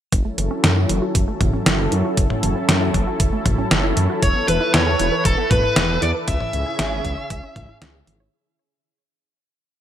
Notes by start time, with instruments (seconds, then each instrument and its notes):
0.12 detuned saw bass F#1, synth arpeggio sound E3, analog synth pad F#3 C#4 E4 A4, kick, closed hi-hat
0.25 synth arpeggio sound A3
0.38 detuned saw bass F#1, synth arpeggio sound E3, closed hi-hat
0.51 synth arpeggio sound C#4
0.64 detuned saw bass F#2, synth arpeggio sound E3, snare, closed hi-hat
0.76 synth arpeggio sound E4
0.89 detuned saw bass F#1, synth arpeggio sound E3, closed hi-hat
1.02 synth arpeggio sound F#4
1.15 detuned saw bass F#1, synth arpeggio sound E3, kick, closed hi-hat
1.28 synth arpeggio sound A3
1.41 detuned saw bass F#1, synth arpeggio sound E3, kick, closed hi-hat, mid tom
1.53 synth arpeggio sound C#4
1.66 detuned saw bass F#1, synth arpeggio sound E3, snare, closed hi-hat
1.79 synth arpeggio sound E4
1.92 detuned saw bass F#2, synth arpeggio sound E3, closed hi-hat
2.05 synth arpeggio sound F#4
2.17 detuned saw bass F#1, synth arpeggio sound E3, kick, closed hi-hat
2.30 synth arpeggio sound A3, mid tom
2.43 detuned saw bass F#1, synth arpeggio sound E3, closed hi-hat
2.56 synth arpeggio sound C#4
2.68 detuned saw bass F#2, synth arpeggio sound E3, snare, closed hi-hat
2.81 synth arpeggio sound E4
2.94 detuned saw bass F#1, synth arpeggio sound E3, kick, closed hi-hat
3.07 synth arpeggio sound F#4
3.20 detuned saw bass F#1, synth arpeggio sound E3, kick, closed hi-hat
3.33 synth arpeggio sound A3
3.46 detuned saw bass F#1, synth arpeggio sound E3, kick, closed hi-hat, mid tom
3.58 synth arpeggio sound C#4
3.71 detuned saw bass F#1, synth arpeggio sound E3, snare, closed hi-hat
3.84 synth arpeggio sound E4
3.97 detuned saw bass F#2, synth arpeggio sound E3, closed hi-hat
4.10 synth arpeggio sound F#4
4.23 detuned saw bass E1, analog synth pad E3 B4, synth arpeggio sound E3, digital synth lead C#5, lead electric guitar C#5, kick, closed hi-hat
4.35 synth arpeggio sound B3
4.48 detuned saw bass E1, synth arpeggio sound E3, digital synth lead B4, lead electric guitar B4, closed hi-hat
4.61 synth arpeggio sound E4
4.74 detuned saw bass E2, synth arpeggio sound E3, lead electric guitar C#5, digital synth lead C#5, snare, closed hi-hat
4.87 synth arpeggio sound A4
4.99 detuned saw bass E1, synth arpeggio sound E3, closed hi-hat
5.12 synth arpeggio sound B4
5.25 detuned saw bass E1, synth arpeggio sound E3, lead electric guitar A4, digital synth lead A4, kick, closed hi-hat
5.38 synth arpeggio sound B3
5.51 detuned saw bass E1, synth arpeggio sound E3, lead electric guitar B4, digital synth lead B4, kick, closed hi-hat, mid tom
5.63 synth arpeggio sound E4
5.76 detuned saw bass E1, synth arpeggio sound E3, snare, closed hi-hat
5.89 synth arpeggio sound A4
6.02 detuned saw bass E2, synth arpeggio sound E3, lead electric guitar D5, digital synth lead D5, closed hi-hat
6.15 synth arpeggio sound B4
6.28 detuned saw bass C#2, analog synth pad C#3 C#4 G#4, synth arpeggio sound E3, lead electric guitar E5, digital synth lead E5, kick, closed hi-hat
6.40 synth arpeggio sound C#4, mid tom
6.53 detuned saw bass C#2, synth arpeggio sound E3, closed hi-hat
6.66 synth arpeggio sound E4
6.79 detuned saw bass G#1, synth arpeggio sound E3, snare, closed hi-hat
6.92 synth arpeggio sound G#4
7.05 detuned saw bass C#2, synth arpeggio sound E3, kick, closed hi-hat
7.18 synth arpeggio sound C#5
7.30 detuned saw bass C#2, synth arpeggio sound E3, kick, closed hi-hat
7.43 synth arpeggio sound C#4
7.56 detuned saw bass C#2, synth arpeggio sound E3, kick, closed hi-hat, mid tom
7.69 synth arpeggio sound E4
7.81 detuned saw bass C#2, synth arpeggio sound E3, snare, closed hi-hat
7.95 synth arpeggio sound G#4
8.07 detuned saw bass G#1, synth arpeggio sound E3, closed hi-hat
8.20 synth arpeggio sound C#5